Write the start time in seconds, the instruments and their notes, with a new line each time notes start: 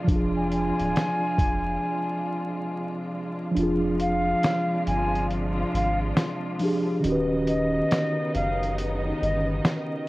Already playing: string section C3 G#3 D4 F4
0.04 sub bass F1, tine electric piano F3 D4, kick
0.09 tine electric piano F4, closed hi-hat
0.16 tine electric piano G#4
0.36 flute G#5
0.52 flute G#5, closed hi-hat
0.79 sub bass D1, closed hi-hat
0.96 finger snap, snare, closed hi-hat
1.38 sub bass F1, kick, closed hi-hat
3.51 tine electric piano F3 D4
3.56 sub bass F1, string section C3 F3 G#3 D4 F4, tine electric piano F4, closed hi-hat
3.63 tine electric piano G#4
4.00 flute F5, closed hi-hat
4.43 finger snap, snare, closed hi-hat
4.87 sub bass G1, flute G#5, closed hi-hat
5.15 closed hi-hat
5.30 closed hi-hat
5.74 sub bass G#1, flute F5, closed hi-hat
6.17 finger snap, snare, closed hi-hat
6.59 tine electric piano F3 D4 G4, open hi-hat
6.65 tine electric piano G#4
7.00 sub bass D#1, string section C#3 D#5, tine electric piano D#3 C#4, closed hi-hat
7.04 string section D#3 B3 D#4, tine electric piano F#4
7.09 tine electric piano G4 B4
7.47 flute D#5, closed hi-hat
7.91 finger snap, snare, closed hi-hat
8.35 sub bass F#1, flute F5, closed hi-hat
8.63 closed hi-hat
8.78 closed hi-hat
9.22 sub bass G1, flute D#5, closed hi-hat
9.65 finger snap, snare, closed hi-hat